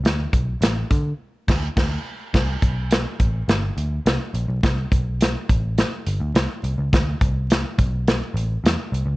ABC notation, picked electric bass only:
X:1
M:4/4
L:1/16
Q:1/4=105
K:Clyd
V:1 name="Picked electric bass" clef=bass
D,,2 B,,,2 A,,,2 D,2 z2 D,,2 D,,2 z2 | C,,2 B,,,4 A,,,2 G,,,2 D,,2 C,, z _B,,, =B,,, | C,,2 B,,,4 A,,,3 z G,,, D,, C,, z C,, ^C,, | D,,2 C,,4 B,,,4 A,,,2 E,, z C,, ^C,, |]